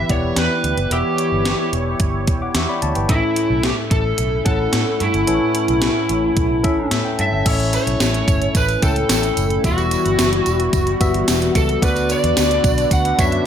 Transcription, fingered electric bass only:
0, 0, Header, 1, 2, 480
1, 0, Start_track
1, 0, Tempo, 545455
1, 803, Time_signature, 4, 2, 24, 8
1, 11847, End_track
2, 0, Start_track
2, 0, Title_t, "Fingered electric bass"
2, 0, Program_c, 0, 33
2, 86, Note_on_c, 0, 28, 90
2, 265, Note_off_c, 0, 28, 0
2, 323, Note_on_c, 0, 40, 105
2, 413, Note_off_c, 0, 40, 0
2, 562, Note_on_c, 0, 38, 87
2, 652, Note_off_c, 0, 38, 0
2, 681, Note_on_c, 0, 30, 83
2, 772, Note_off_c, 0, 30, 0
2, 798, Note_on_c, 0, 28, 94
2, 890, Note_off_c, 0, 28, 0
2, 1160, Note_on_c, 0, 31, 71
2, 1342, Note_off_c, 0, 31, 0
2, 1519, Note_on_c, 0, 28, 82
2, 1701, Note_off_c, 0, 28, 0
2, 1760, Note_on_c, 0, 31, 82
2, 2005, Note_off_c, 0, 31, 0
2, 2005, Note_on_c, 0, 28, 87
2, 2184, Note_off_c, 0, 28, 0
2, 2242, Note_on_c, 0, 40, 102
2, 2333, Note_off_c, 0, 40, 0
2, 2487, Note_on_c, 0, 38, 83
2, 2576, Note_off_c, 0, 38, 0
2, 2605, Note_on_c, 0, 31, 83
2, 2694, Note_off_c, 0, 31, 0
2, 2721, Note_on_c, 0, 33, 90
2, 2812, Note_off_c, 0, 33, 0
2, 3082, Note_on_c, 0, 35, 78
2, 3263, Note_off_c, 0, 35, 0
2, 3443, Note_on_c, 0, 33, 82
2, 3623, Note_off_c, 0, 33, 0
2, 3685, Note_on_c, 0, 35, 89
2, 3864, Note_off_c, 0, 35, 0
2, 3926, Note_on_c, 0, 33, 84
2, 4105, Note_off_c, 0, 33, 0
2, 4164, Note_on_c, 0, 45, 93
2, 4254, Note_off_c, 0, 45, 0
2, 4407, Note_on_c, 0, 43, 87
2, 4496, Note_off_c, 0, 43, 0
2, 4526, Note_on_c, 0, 31, 86
2, 4615, Note_off_c, 0, 31, 0
2, 4642, Note_on_c, 0, 33, 99
2, 4733, Note_off_c, 0, 33, 0
2, 5003, Note_on_c, 0, 35, 80
2, 5183, Note_off_c, 0, 35, 0
2, 5365, Note_on_c, 0, 33, 81
2, 5544, Note_off_c, 0, 33, 0
2, 5603, Note_on_c, 0, 35, 92
2, 5847, Note_off_c, 0, 35, 0
2, 5847, Note_on_c, 0, 33, 85
2, 6026, Note_off_c, 0, 33, 0
2, 6085, Note_on_c, 0, 45, 89
2, 6174, Note_off_c, 0, 45, 0
2, 6327, Note_on_c, 0, 43, 89
2, 6416, Note_off_c, 0, 43, 0
2, 6443, Note_on_c, 0, 31, 82
2, 6533, Note_off_c, 0, 31, 0
2, 6565, Note_on_c, 0, 33, 101
2, 6834, Note_off_c, 0, 33, 0
2, 6924, Note_on_c, 0, 35, 79
2, 7014, Note_off_c, 0, 35, 0
2, 7044, Note_on_c, 0, 33, 83
2, 7223, Note_off_c, 0, 33, 0
2, 7284, Note_on_c, 0, 31, 77
2, 7464, Note_off_c, 0, 31, 0
2, 7525, Note_on_c, 0, 33, 88
2, 7705, Note_off_c, 0, 33, 0
2, 7767, Note_on_c, 0, 37, 79
2, 7946, Note_off_c, 0, 37, 0
2, 8005, Note_on_c, 0, 33, 86
2, 8184, Note_off_c, 0, 33, 0
2, 8245, Note_on_c, 0, 30, 82
2, 8424, Note_off_c, 0, 30, 0
2, 8487, Note_on_c, 0, 28, 103
2, 8755, Note_off_c, 0, 28, 0
2, 8851, Note_on_c, 0, 31, 78
2, 8938, Note_off_c, 0, 31, 0
2, 8973, Note_on_c, 0, 30, 88
2, 9150, Note_off_c, 0, 30, 0
2, 9211, Note_on_c, 0, 28, 86
2, 9388, Note_off_c, 0, 28, 0
2, 9445, Note_on_c, 0, 30, 91
2, 9624, Note_off_c, 0, 30, 0
2, 9687, Note_on_c, 0, 31, 90
2, 9866, Note_off_c, 0, 31, 0
2, 9933, Note_on_c, 0, 28, 88
2, 10109, Note_off_c, 0, 28, 0
2, 10167, Note_on_c, 0, 37, 91
2, 10345, Note_off_c, 0, 37, 0
2, 10406, Note_on_c, 0, 38, 97
2, 10675, Note_off_c, 0, 38, 0
2, 10769, Note_on_c, 0, 40, 79
2, 10857, Note_off_c, 0, 40, 0
2, 10893, Note_on_c, 0, 38, 78
2, 11070, Note_off_c, 0, 38, 0
2, 11124, Note_on_c, 0, 35, 98
2, 11304, Note_off_c, 0, 35, 0
2, 11363, Note_on_c, 0, 38, 98
2, 11543, Note_off_c, 0, 38, 0
2, 11605, Note_on_c, 0, 42, 85
2, 11785, Note_off_c, 0, 42, 0
2, 11847, End_track
0, 0, End_of_file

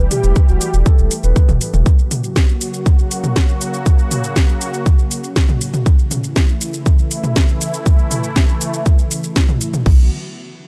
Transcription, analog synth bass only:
0, 0, Header, 1, 2, 480
1, 0, Start_track
1, 0, Tempo, 500000
1, 1787, Time_signature, 4, 2, 24, 8
1, 10249, End_track
2, 0, Start_track
2, 0, Title_t, "Analog synth bass"
2, 0, Program_c, 0, 38
2, 227, Note_on_c, 0, 28, 80
2, 315, Note_off_c, 0, 28, 0
2, 467, Note_on_c, 0, 28, 71
2, 555, Note_off_c, 0, 28, 0
2, 706, Note_on_c, 0, 28, 83
2, 795, Note_off_c, 0, 28, 0
2, 946, Note_on_c, 0, 28, 78
2, 1035, Note_off_c, 0, 28, 0
2, 1186, Note_on_c, 0, 28, 79
2, 1275, Note_off_c, 0, 28, 0
2, 1426, Note_on_c, 0, 28, 73
2, 1515, Note_off_c, 0, 28, 0
2, 1666, Note_on_c, 0, 28, 80
2, 1755, Note_off_c, 0, 28, 0
2, 9466, Note_on_c, 0, 35, 100
2, 9690, Note_off_c, 0, 35, 0
2, 10249, End_track
0, 0, End_of_file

